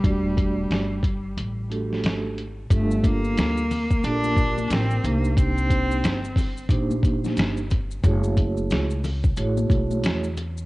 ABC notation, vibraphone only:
X:1
M:4/4
L:1/16
Q:"Swing 16ths" 1/4=90
K:Glyd
V:1 name="Vibraphone"
[A,DFGd]4- [A,DFGd] z4 z [A,DFGA]4 z2 | [G,D=FGA]4- [G,DFGA] z3 [_B,DFGA_B]4- [B,DFGAB] z [B,D_EG=c]2- | [_B,D_EG=c]4 z4 [B,DEGc]4- [B,DEGc] z3 | [^G,A,EF^Gc]4- [G,A,EFGc] z3 [A,EFGc]4- [A,EFGc] z3 |]